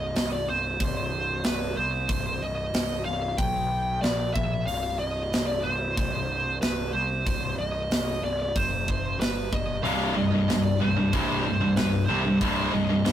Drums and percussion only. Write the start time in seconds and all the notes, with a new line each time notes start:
0.16 snare, open hi-hat
0.80 kick, open hi-hat
1.44 snare, open hi-hat
2.09 kick, open hi-hat
2.74 snare, open hi-hat
3.38 kick, open hi-hat
4.03 snare, open hi-hat
4.36 kick
4.68 open hi-hat
5.33 snare, open hi-hat
5.97 kick, open hi-hat
6.62 snare, open hi-hat
7.27 kick, open hi-hat
7.91 snare, open hi-hat
8.56 kick, open hi-hat
8.88 kick
9.21 snare, open hi-hat
9.53 kick
9.85 open hi-hat
10.49 snare, open hi-hat
11.13 kick, open hi-hat
11.76 snare, open hi-hat
12.41 kick, open hi-hat
13.05 snare, open hi-hat